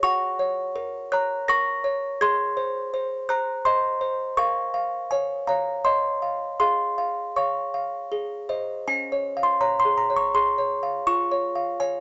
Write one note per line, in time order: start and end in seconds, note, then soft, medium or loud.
0.03 2.16 F#4 medium
0.03 1.08 F#5 loud
0.03 1.08 C#6 loud
0.39 0.97 C#5 medium
0.76 1.33 A#4 medium
1.12 1.70 C#5 medium
1.12 1.46 A#5 medium
1.12 1.46 F#6 loud
1.48 2.06 A#4 medium
1.48 2.17 C#6 loud
1.48 2.18 A#6 loud
1.84 2.20 C#5 medium
2.21 4.34 G#4 medium
2.21 3.26 C6 medium
2.21 3.25 G#6 loud
2.57 2.92 C5 medium
2.94 3.28 C5 medium
3.29 3.64 C5 medium
3.29 3.63 A#5 medium
3.29 3.64 F#6 loud
3.65 4.00 C5 medium
3.65 4.34 D#5 medium
3.65 4.35 C6 loud
4.01 4.37 C5 medium
4.37 6.56 A#4 medium
4.37 4.73 F5 medium
4.37 5.07 C#6 loud
4.74 5.32 F5 medium
5.11 5.45 C#5 medium
5.11 5.46 G#5 medium
5.47 5.82 C#5 soft
5.47 6.07 F5 soft
5.47 5.83 A#5 medium
5.84 6.45 C#5 soft
5.84 6.57 D#5 medium
5.84 6.57 C6 medium
6.22 6.60 F5 soft
6.60 8.08 G#4 medium
6.60 6.97 F5 medium
6.60 7.33 C6 loud
6.98 7.36 F5 soft
7.36 7.97 C#5 soft
7.36 7.73 F5 soft
7.36 8.09 C#6 medium
7.74 8.12 F5 soft
8.12 8.85 G#4 medium
8.49 8.83 C5 soft
8.49 8.83 D#5 soft
8.88 11.03 C#4 medium
8.88 9.41 G#5 loud
9.12 9.51 C#5 medium
9.37 9.76 F5 medium
9.43 9.61 C6 medium
9.61 10.00 C#5 soft
9.61 9.79 A#5 loud
9.80 9.98 C6 medium
9.85 10.24 G#4 soft
9.98 10.16 A#5 medium
10.10 10.49 C#5 soft
10.16 10.34 C#6 medium
10.34 10.73 G#4 soft
10.34 11.04 C6 loud
10.58 10.97 C#5 soft
10.83 11.07 F5 soft
11.07 12.00 F4 medium
11.07 11.77 C#6 loud
11.31 11.70 C#5 soft
11.55 11.95 F5 medium
11.80 12.00 C#5 soft
11.80 12.00 G#5 medium